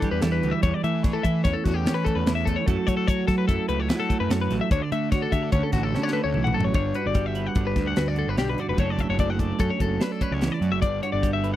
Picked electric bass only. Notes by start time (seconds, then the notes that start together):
0.12 E2
0.23 E2
0.44 D2
0.63 E2
0.84 E3
1.25 E3
1.45 E2
1.65 E2
1.85 E3
2.16 E2
2.26 E2
2.47 E2
2.68 F#2
2.88 F#3
3.28 F#3
3.49 F#2
3.69 C#2
3.90 F#3
4.20 F#2
4.30 F#2
4.51 A1
4.71 D2
4.92 D3
5.32 D3
5.53 D2
5.73 A1
5.94 D3
6.25 D2
6.35 B1
6.55 A1
6.75 G1
7.06 G1
7.56 G1
7.76 D2
7.98 D2
8.27 G1
8.37 B1
8.68 F1
8.78 F#1
9.09 F#1
9.60 F#2
9.81 F#1
10.31 C#2
10.61 F#2
10.72 F#1
10.83 G1
11.13 G1